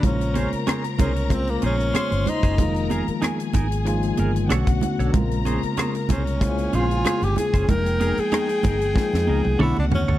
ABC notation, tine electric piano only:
X:1
M:4/4
L:1/8
Q:"Swing 16ths" 1/4=94
K:Bbdor
V:1 name="Tine electric piano"
[D,A,B,Fc]4 [A,B,DFc]4 | [E,F,A,B,F]4 [E,F,A,B,F]2 [=D,=A,=B,^C^F]2 | [D,A,B,CF]4 [A,B,D=EFc]4 | [F,A,B,Eg]4 [F,A,B,Eg]2 [=D,=A,=B,^C^F]2 |]